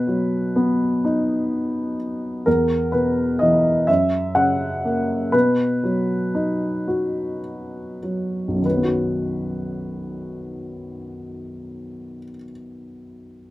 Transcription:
Already playing: B2 B4
0.07 F#3
0.56 B3
1.05 D#4
2.46 E2 A#4
2.92 B2 B4
3.39 E3 D#5
3.87 F#2 E5
4.35 C#3 F#5
4.85 A#3
5.32 B2 B4
5.84 F#3
6.35 D#4
6.88 F#4
8.03 F#3
8.48 B1
8.55 F#2
8.62 D#3 B4
8.69 F#3
8.76 B3
8.83 F#4

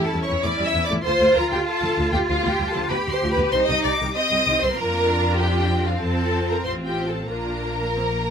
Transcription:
Already playing: C#4 E4
0.02 A4 A5
0.13 E2 G3
0.22 C#5 C#6
0.29 E2 E3
0.43 E2 A3 E4 D5 D6
0.59 E2 G3
0.63 E5 E6
0.73 E2 E3
0.84 D5 D6
0.90 E2 A3
1.03 D2 D3 F4 C5 C6
1.20 D2 A3
1.35 D2 F3 A#4 A#5
1.50 D2 D3 G4 G5
1.65 A4 A5
1.82 D2 F3
1.98 D2 D3
2.12 D2 A3 G4 G5
2.27 D2 F3 F4 G4 F5
2.44 D2 B3 G5
2.50 G4
2.60 D2 G3
2.69 A4 A5
2.75 D2 F3
2.88 D2 B3 G4 B4 B5
3.06 D2 G3 C6
3.12 C5
3.22 D2 F3
3.31 B4 B5
3.37 D2 B3
3.52 C2 D#3 D#4 C5 C6
3.69 C2 C4 D#5 D#6
3.84 C2 G3 D5 D6
4.00 C2 D#3
4.15 C4 D#5 D#6
4.30 C2 G3
4.46 C2 D#3
4.61 C2 C4 C5 C6
4.74 F2 A#3 A#4 A#5
4.79 D4 F4
5.07 D4
5.36 C4 G4 G5
5.86 F4 F5
6.01 F2 C4 F4 A4 A5
6.48 A#4 A#5
6.64 A1 C4 F4 C5 C6
6.85 G4 G5
7.07 A4 A5
7.29 A#1 A#3 D4 F4 A#4 A#5
7.96 C4
8.19 D4

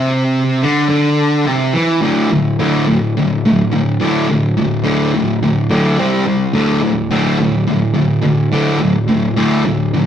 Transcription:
Already playing: C3
0.62 D3
0.89 D3
1.46 C3
1.74 E3
2.02 D2 A2 D3
2.31 D2 A2
2.59 D2 A2 D3
2.87 D2 A2
3.17 D2 A2
3.45 D2 A2
3.72 D2 A2
4.00 D2 A2 D3
4.29 D2 A2
4.57 D2 A2
4.84 D2 A2 D3
5.14 D2 A2
5.43 D2 A2
5.70 D2 A2 D3
5.98 C3 G3 C4
6.26 C3 G3
6.54 D2 A2 D3
6.81 D2 A2
7.11 D2 A2 D3
7.39 D2 A2
7.67 D2 A2
7.94 D2 A2
8.23 D2 A2
8.52 D2 A2 D3
8.80 D2 A2
9.08 D2 A2
9.37 D2 A2 D3
9.65 D2 A2
9.94 D2 A2

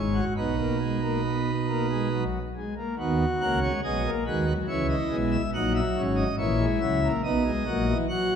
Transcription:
Already playing: G#1 G#2 G#3 C#5
0.14 F#4
0.37 B1 B2 B3 D#4 B4
0.58 A#3
0.81 G#3
1.02 A#3
1.24 B3
1.68 A#3
1.90 G#3
2.12 F#3
2.57 G#3
2.77 A#3
2.99 D#2 D#3 B3 F#4
3.41 C#2 C#3 A#3 F#5
3.62 G#3 C#5
3.83 B1 B2 F#3 G#4 D#5
4.05 A#3
4.26 D#2 D#3 G#3 F#4 B4
4.48 F#3
4.68 C#2 C#3 E3 E4 C#5
4.90 D#5
5.10 B1 B2 G#3
5.31 E5
5.54 A#1 A#2 F#3 D#4 F#5
5.75 E5
5.97 G#1 G#2 C#4
6.16 D#5
6.38 A#1 A#2 E3 E4 C#5
6.61 G#3
6.81 C#2 C#3 F#3 E5
7.04 A#3
7.24 B1 B2 B3 D#4 D#5
7.45 G#3
7.67 A#1 A#2 F#3 F#4
7.88 E3
8.09 F#3 F#4 F#5

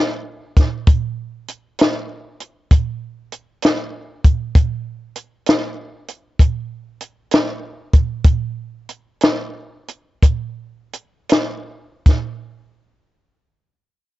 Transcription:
0.56 kick, snare, closed hi-hat
0.87 kick, closed hi-hat
1.48 closed hi-hat
1.79 snare, closed hi-hat
2.40 closed hi-hat
2.71 kick, closed hi-hat
3.32 closed hi-hat
3.63 snare, closed hi-hat
4.24 kick, closed hi-hat
4.55 kick, closed hi-hat
5.16 closed hi-hat
5.46 snare, closed hi-hat
6.08 closed hi-hat
6.39 kick, closed hi-hat
7.01 closed hi-hat
7.31 snare, closed hi-hat
7.93 kick, closed hi-hat
8.24 kick, closed hi-hat
8.89 closed hi-hat
9.21 snare, closed hi-hat
9.88 closed hi-hat
10.23 kick, closed hi-hat
10.93 closed hi-hat
11.29 snare, closed hi-hat
12.06 kick, snare, closed hi-hat

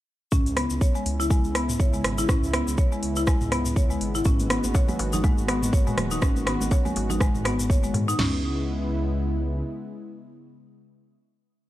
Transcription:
0.32 C#2 C#3 G#3 B3 C#4 E4, kick, mid tom, shaker
0.46 open hi-hat, shaker
0.57 B3, cross-stick, open hi-hat
0.70 C#2, shaker
0.81 C#5, kick, shaker
0.95 G#3, shaker
1.06 C#2, open hi-hat
1.20 E4, shaker
1.30 G#3, kick, shaker
1.44 C#2, shaker
1.55 B3, cross-stick, open hi-hat
1.69 mid tom, shaker
1.80 C#2 C#5, kick, shaker
1.93 G#3, shaker
2.04 G#1, cross-stick, open hi-hat
2.18 E4, shaker
2.29 C#2 C#4, kick, cross-stick, mid tom, shaker
2.44 shaker
2.53 B3, cross-stick, open hi-hat
2.68 C#2, shaker
2.78 C#5, kick, shaker
2.92 G#3, shaker
3.03 C#2, open hi-hat
3.16 E4, shaker
3.27 G#3, kick, cross-stick, shaker
3.41 C#2, mid tom, shaker
3.52 B3, cross-stick, open hi-hat
3.65 mid tom, open hi-hat, shaker
3.76 C#2 C#5, kick, shaker
3.90 G#3, shaker
4.01 G#1, open hi-hat
4.15 E4, shaker
4.25 G#1 D#3 C#4 F#4, kick, mid tom, darbuka ka, shaker
4.39 open hi-hat, high conga, shaker
4.50 B3, cross-stick, open hi-hat
4.64 G#1, high conga, shaker
4.75 C#5, kick, darbuka tek, shaker
4.88 G#3, high conga, low conga, shaker
4.99 G#1, open hi-hat, darbuka tek
5.13 D#4, low conga, shaker
5.24 G#3, kick, darbuka tek, high conga, shaker
5.38 G#1, shaker
5.48 B3, cross-stick, open hi-hat, darbuka tek
5.62 mid tom, high conga, shaker
5.73 G#1 C#5, kick, darbuka ka, shaker
5.87 G#3, darbuka dum, shaker
5.97 D#1, cross-stick, open hi-hat, high conga, low conga, darbuka dum
6.11 D#4, shaker
6.22 G#1 C#4, kick, cross-stick, mid tom, darbuka ka, shaker
6.36 high conga, shaker
6.46 B3, cross-stick, open hi-hat, darbuka tek
6.61 G#1, high conga, shaker
6.71 C#5, kick, darbuka tek, shaker
6.85 G#3, high conga, low conga, shaker
6.96 G#1, open hi-hat, darbuka tek
7.10 D#4, low conga, shaker
7.21 G#3, kick, cross-stick, shaker
7.35 G#1, mid tom, shaker
7.44 B3, cross-stick, open hi-hat, darbuka ka, darbuka tek
7.59 mid tom, open hi-hat, shaker
7.70 F#1 C#5, kick, darbuka tek, high conga, shaker
7.83 G#3, shaker
7.94 G#2, open hi-hat, darbuka ka, darbuka dum
8.08 D#4, shaker
8.19 C#2 C#3 G#3 B3 C#4 E4, snare, floor tom, crash

